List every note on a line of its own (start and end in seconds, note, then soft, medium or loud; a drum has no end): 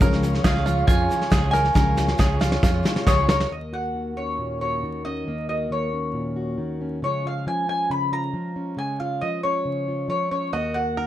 0.00 0.38 C#2 medium
0.00 1.72 C#2 medium
0.00 0.23 C#3 medium
0.00 1.72 C#3 medium
0.00 3.46 F3 medium
0.00 0.21 F3 medium
0.00 0.22 G#3 medium
0.00 3.47 C#4 medium
0.00 0.23 C#4 medium
0.00 0.24 F4 medium
0.00 3.47 G#4 medium
0.00 0.44 A#4 medium
0.00 3.48 C#5 medium
0.00 3.47 F5 medium
0.00 3.47 C#6 medium
0.00 kick loud
0.00 snare soft
0.00 shaker medium
0.13 snare soft
0.22 0.34 F3 medium
0.22 0.34 G#3 medium
0.22 0.33 C#4 medium
0.22 0.32 F4 medium
0.22 snare soft
0.22 shaker medium
0.33 0.44 G#3 soft
0.33 0.45 C#4 soft
0.33 0.44 F4 medium
0.33 snare soft
0.44 0.82 C#2 medium
0.44 0.55 C#3 medium
0.44 0.56 F3 medium
0.44 0.56 G#3 medium
0.44 0.56 C#4 medium
0.44 0.55 F4 medium
0.44 0.66 G#4 medium
0.44 0.87 F5 medium
0.44 kick medium
0.44 snare loud
0.44 clap medium
0.44 shaker medium
0.56 0.66 G#3 soft
0.56 0.66 C#4 soft
0.56 0.67 F4 medium
0.56 snare soft
0.66 0.77 F3 medium
0.66 0.78 G#3 medium
0.66 0.77 C#4 medium
0.66 0.87 F4 medium
0.66 0.76 F4 medium
0.66 snare soft
0.66 shaker medium
0.77 1.00 G#3 soft
0.77 0.99 C#4 soft
0.77 0.97 F4 medium
0.87 1.07 F2 loud
0.87 1.31 F4 medium
0.87 1.50 G#5 loud
0.87 kick loud
0.87 snare soft
0.87 clap medium
0.87 shaker medium
0.98 1.09 G#3 soft
0.98 1.10 C#4 medium
0.98 1.10 F4 medium
1.09 1.21 F3 medium
1.09 1.21 G#3 medium
1.09 1.20 C#4 medium
1.09 1.18 F4 medium
1.09 snare soft
1.09 shaker medium
1.19 1.30 G#3 soft
1.19 1.30 C#4 soft
1.19 1.31 F4 soft
1.19 snare soft
1.30 1.69 C#2 loud
1.30 1.42 C#3 medium
1.30 1.42 F3 medium
1.30 1.42 G#3 medium
1.30 1.42 C#4 medium
1.30 1.41 F4 medium
1.30 1.53 G#4 medium
1.30 kick medium
1.30 snare loud
1.30 clap loud
1.30 shaker medium
1.42 1.73 G#3 soft
1.42 1.74 C#4 medium
1.42 1.75 F4 soft
1.51 1.75 A#4 medium
1.51 3.23 G#5 loud
1.51 snare soft
1.51 shaker medium
1.65 snare soft
1.74 2.12 C#2 loud
1.74 3.47 C#2 medium
1.74 1.97 C#3 medium
1.74 3.47 C#3 medium
1.74 1.94 F3 medium
1.74 1.95 G#3 medium
1.74 1.96 C#4 medium
1.74 1.97 F4 medium
1.74 2.18 A#4 medium
1.74 kick loud
1.74 snare medium
1.74 shaker medium
1.96 2.07 F3 medium
1.96 2.08 G#3 medium
1.96 2.07 C#4 medium
1.96 2.06 F4 medium
1.96 snare medium
1.96 shaker medium
2.08 2.18 G#3 soft
2.08 2.18 C#4 medium
2.08 2.19 F4 medium
2.08 snare medium
2.18 2.56 C#2 medium
2.18 2.29 C#3 medium
2.18 2.30 F3 loud
2.18 2.30 G#3 medium
2.18 2.29 C#4 loud
2.18 2.29 F4 loud
2.18 2.41 G#4 medium
2.18 kick medium
2.18 snare medium
2.18 clap medium
2.18 shaker medium
2.30 2.39 G#3 soft
2.30 2.40 C#4 medium
2.30 2.40 F4 medium
2.40 2.51 F3 medium
2.40 2.51 G#3 medium
2.40 2.50 C#4 medium
2.40 2.62 F4 medium
2.40 2.49 F4 medium
2.40 snare medium
2.40 shaker medium
2.50 2.73 G#3 soft
2.50 2.73 C#4 medium
2.50 2.71 F4 medium
2.50 snare medium
2.63 2.82 F2 loud
2.63 3.06 F4 medium
2.63 kick loud
2.63 snare medium
2.63 clap medium
2.63 shaker loud
2.72 2.83 G#3 soft
2.72 2.84 C#4 medium
2.72 2.84 F4 medium
2.83 2.95 F3 medium
2.83 2.95 G#3 medium
2.83 2.95 C#4 medium
2.83 2.94 F4 medium
2.83 snare medium
2.83 shaker medium
2.95 3.07 G#3 medium
2.95 3.07 C#4 soft
2.95 3.06 F4 medium
2.95 snare medium
3.07 3.44 C#2 medium
3.07 3.18 C#3 medium
3.07 3.18 F3 medium
3.07 3.18 G#3 medium
3.07 3.18 C#4 medium
3.07 3.17 F4 medium
3.07 3.28 G#4 medium
3.07 3.28 C#5 medium
3.07 kick medium
3.07 snare loud
3.07 clap loud
3.07 shaker medium
3.18 3.52 G#3 soft
3.18 3.51 C#4 medium
3.18 3.51 F4 medium
3.29 3.50 A#4 medium
3.29 3.52 C#5 medium
3.29 snare loud
3.29 shaker medium
3.40 snare medium
3.50 5.26 D#2 medium
3.50 5.24 A#3 soft
3.50 3.74 D#5 medium
3.73 4.60 F#4 soft
3.73 4.18 F#5 medium
3.95 4.82 D#3 soft
4.17 5.05 C#4 soft
4.17 4.60 C#5 medium
4.38 4.82 A#2 soft
4.61 5.24 F#4 soft
4.61 5.04 C#5 medium
4.83 5.69 D#3 soft
5.05 5.30 C#4 soft
5.05 5.45 D#5 medium
5.27 7.03 D#2 medium
5.27 7.00 A#3 soft
5.49 6.35 F#4 soft
5.49 5.71 D#5 medium
5.70 6.57 D#3 soft
5.70 6.77 C#5 medium
5.93 6.81 C#4 soft
6.13 6.58 A#2 soft
6.36 7.00 F#4 soft
6.58 7.02 D#3 soft
6.81 7.04 C#4 soft
7.02 7.46 C#3 medium
7.02 7.46 F3 soft
7.02 8.76 G#3 soft
7.02 7.69 C#4 soft
7.02 7.25 F4 medium
7.02 7.26 C#5 medium
7.26 8.11 F4 soft
7.26 7.47 F5 medium
7.47 8.32 F3 soft
7.47 7.68 G#5 medium
7.69 8.56 C#4 soft
7.69 7.89 G#5 medium
7.90 8.34 C#3 soft
7.90 8.12 B5 medium
8.12 8.76 F4 soft
8.12 8.78 A#5 medium
8.33 8.75 F3 soft
8.56 9.44 C#4 soft
8.77 9.21 C#3 medium
8.77 10.53 G#3 soft
8.77 8.99 G#5 medium
9.00 9.87 F4 soft
9.00 9.23 F5 medium
9.21 10.07 F3 soft
9.21 9.43 D#5 medium
9.43 10.31 C#4 soft
9.43 10.09 C#5 medium
9.65 10.09 C#3 soft
9.88 10.51 F4 soft
10.08 10.50 F3 soft
10.08 10.30 C#5 medium
10.31 10.56 C#4 soft
10.31 10.52 C#5 medium
10.53 11.07 D#2 medium
10.53 11.07 A#3 soft
10.53 10.97 F#4 medium
10.53 10.76 D#5 medium
10.74 11.07 F#4 soft
10.74 11.07 F#5 medium
10.97 11.07 D#3 soft
10.97 11.07 A#4 medium